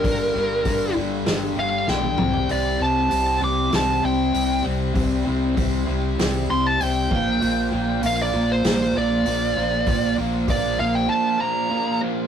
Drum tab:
HH |o---o---o-------|o---o---o---o---|o---o---o---o---|o---o---o---o---|
SD |--------o---o---|--------o-------|--------o-------|--------o-------|
T1 |-------------o--|----------------|----------------|----------------|
T2 |--------------o-|----------------|----------------|----------------|
FT |---------------o|----------------|----------------|----------------|
BD |o---o-----------|----------------|o---o---------o-|----------------|

HH |o---o-----------|
SD |----------------|
T1 |----------------|
T2 |----------------|
FT |----------------|
BD |o---o-----------|